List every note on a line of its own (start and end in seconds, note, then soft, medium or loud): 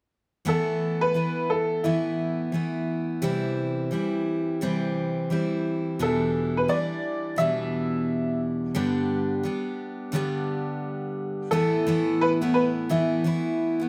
0.45 1.14 A2 medium
0.45 1.14 E3 medium
0.45 1.14 A3 medium
0.45 1.15 B3 medium
0.45 1.16 E4 medium
0.45 1.04 A4 medium
1.01 1.51 B4 medium
1.14 1.84 E3 soft
1.14 1.84 A3 soft
1.14 1.84 B3 soft
1.14 1.85 E4 soft
1.50 1.85 A4 medium
1.84 2.53 A2 medium
1.84 2.52 E3 medium
1.84 2.52 A3 medium
1.84 2.53 B3 medium
1.84 2.83 E4 medium
1.84 2.55 E4 medium
2.52 3.22 E3 soft
2.52 3.22 A3 soft
2.52 3.23 B3 soft
2.52 3.23 E4 soft
3.22 3.91 C3 medium
3.22 3.90 E3 medium
3.22 3.91 G3 medium
3.22 3.92 C4 medium
3.22 3.93 E4 medium
3.91 4.61 E3 soft
3.91 4.62 G3 soft
3.91 4.61 C4 medium
3.91 4.63 E4 medium
4.61 5.30 C3 medium
4.61 5.30 E3 medium
4.61 5.31 G3 medium
4.61 5.31 C4 medium
4.61 5.32 E4 medium
5.30 6.00 E3 soft
5.30 6.00 G3 soft
5.30 6.00 C4 soft
5.30 6.01 E4 medium
5.99 6.68 E2 medium
5.99 6.68 B2 medium
5.99 6.67 E3 medium
5.99 6.69 G3 medium
5.99 6.69 D4 medium
5.99 6.69 E4 medium
5.99 6.52 A4 medium
6.57 6.70 B4 medium
6.68 7.37 E3 soft
6.68 7.39 G3 soft
6.68 7.39 D4 soft
6.68 7.39 E4 soft
6.68 7.40 D5 medium
7.36 8.74 E2 medium
7.36 8.74 B2 medium
7.36 8.75 E3 medium
7.36 8.75 G3 medium
7.36 8.76 D4 medium
7.36 8.37 E5 medium
7.41 8.76 E4 medium
8.74 9.44 G2 medium
8.74 9.44 D3 medium
8.74 9.42 G3 medium
8.74 9.44 B3 medium
8.74 9.44 D4 medium
8.74 9.45 G4 medium
9.43 10.13 G3 soft
9.43 10.14 B3 soft
9.43 10.14 D4 medium
9.43 10.15 G4 medium
10.12 11.51 G2 medium
10.12 11.51 D3 medium
10.12 11.51 G3 medium
10.12 11.52 B3 medium
10.12 11.52 D4 medium
10.12 11.53 G4 medium
11.51 11.85 A2 medium
11.51 11.85 E3 medium
11.51 11.86 A3 medium
11.51 11.86 B3 medium
11.51 11.87 E4 medium
11.51 12.23 A4 medium
11.87 12.42 A2 medium
11.87 12.41 E3 medium
11.87 12.41 A3 medium
11.87 12.41 B3 medium
11.87 12.40 E4 medium
12.21 12.29 B4 medium
12.41 12.88 A2 medium
12.41 12.89 E3 soft
12.41 12.89 A3 soft
12.41 12.90 B3 medium
12.41 12.90 E4 medium
12.54 12.62 B4 medium
12.89 13.25 A2 medium
12.89 13.23 E3 medium
12.89 13.24 A3 medium
12.89 13.25 B3 medium
12.89 13.89 E4 medium
12.89 13.26 E4 medium
13.24 13.80 E3 medium
13.24 13.80 A3 medium
13.24 13.80 B3 medium
13.24 13.78 E4 medium
13.80 13.89 A3 soft
13.80 13.89 B3 soft
13.80 13.89 E4 soft